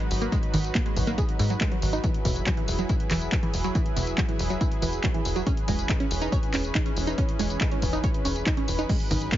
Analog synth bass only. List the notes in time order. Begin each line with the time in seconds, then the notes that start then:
0.11 G#1
0.54 G#1
0.97 G#1
1.39 G#2
1.82 G#1
2.25 E1
2.68 E1
3.11 E1
3.54 E1
3.97 E1
4.39 E1
4.82 E1
5.25 E1
5.68 E1
6.11 E1
6.54 E1
6.97 E1
7.39 E1
7.82 E1
8.25 E1
8.68 E1
9.11 G#1